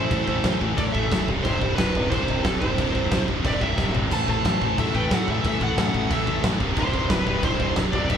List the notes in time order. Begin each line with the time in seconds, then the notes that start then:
Already playing: E3 A3 E4 C5
0.11 A1 A2 E3 A3, kick, crash
0.28 A1 A2 E3 A3, kick
0.44 A1 A2 E3 A3, kick, snare, crash
0.61 A1 A2 E3 A3, kick
0.76 A1 A2 E3 A3 A4 D5, kick, crash
0.92 A1 A2 E3 A3 A4 E5, kick
1.12 B0 A2 E3 A3, kick, snare, crash
1.28 C1 C2 G2 C3, kick
1.43 C1 C2 G2 C3 E4 C5, kick, crash
1.61 C1 C2 G2 C3, kick
1.76 C1 C2 G2 C3 E4 B4, kick, snare, crash
1.95 C1 C2 G2 C3, kick
2.11 C1 C2 G2 C3 E4 C5, kick, crash
2.26 C1 C2 G2 C3, kick
2.44 C1 C2 G2 C3 C4 A4, kick, snare, crash
2.60 C1 C2 G2 C3 E4 C5, kick
2.78 C1 C2 G2 C3, kick, crash
2.95 C1 C2 G2 C3, kick
3.11 C1 C2 G2 C3, kick, snare, crash
3.27 C1 C2 G2 C3, kick
3.44 C1 C2 G2 C3 G4 D5, kick, crash
3.61 C1 C2 G2 C3 G4 E5, kick
3.76 C1 C2 G2 C3, kick, snare
3.94 G1 C2 G2 C3, floor tom
4.11 A1 A2 E3 A3 C5 A5, kick, splash, crash
4.28 A1 A2 E3 A3 C5 A5, kick
4.43 A1 A2 E3 A3, kick, snare, crash
4.60 A1 A2 E3 A3, kick
4.78 A1 A2 E3 A3 A4 E5, kick, crash
4.94 A1 A2 E3 A3 B4 G5, kick
5.11 A1 A2 E3 A3 A4 F#5, kick, snare, crash
5.28 A1 A2 E3 A3 G4 E5, kick
5.44 A1 A2 E3 A3 A4, kick, crash
5.48 E5
5.60 A1 A2 E3 A3 A4 F#5, kick
5.76 A1 A2 E3 A3, kick, snare, crash
5.93 A1 A2 E3 A3, kick
6.11 A1 A2 E3 A3 A4 E5, kick, crash
6.27 A1 A2 E3 A3, kick
6.43 A1 A2 E3 A3, kick, snare, crash
6.59 C1 C2 G2 C3, kick
6.75 C1 C2 G2 C3 E4 C5, kick, crash
6.93 C1 C2 G2 C3, kick
7.10 C1 C2 G2 C3 E4 B4, kick, snare, crash
7.26 C1 C2 G2 C3, kick
7.42 C1 C2 G2 C3 E4 C5, kick, crash
7.60 C1 C2 G2 C3, kick
7.76 C1 C2 G2 C3, kick, snare, crash
7.92 C1 C2 G2 C3 F#4 D5, kick
8.09 C1 C2 G2 C3 G4 E5, kick, crash